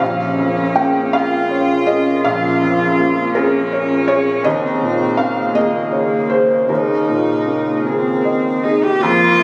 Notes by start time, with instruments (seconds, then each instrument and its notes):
0.00 felt piano A#1 F5, analog synth pad C#4 G#4 A#4, cello C#4
0.39 felt piano F2
0.76 felt piano A#3 G5
1.13 cello F4, felt piano G#4 F5
1.51 felt piano C#5
1.86 felt piano G#4 D#5
2.24 felt piano A#1 F5, cello F4
2.62 felt piano F2
3.00 felt piano A#3
3.35 cello C#4, felt piano G#4 A#4
3.73 felt piano C#5
4.08 felt piano G#4 C#5
4.43 felt piano D#2 D#5, analog synth pad C#3 G#4 A#4, cello C4
4.81 felt piano A#2
5.17 felt piano A#3 F5
5.54 cello A#3, felt piano G#4 D#5
5.92 felt piano C#5
6.29 felt piano G#4 C5
6.68 felt piano D#2 A#4, cello D#4
7.08 felt piano A#2
7.47 felt piano A#3
7.86 cello C4, felt piano G#4
8.25 felt piano D#5
8.63 cello D#4, felt piano G#4
8.83 cello G4
9.02 felt piano F2, analog synth pad G#3 D#4 C5, viola A#3, cello F4
9.39 felt piano C3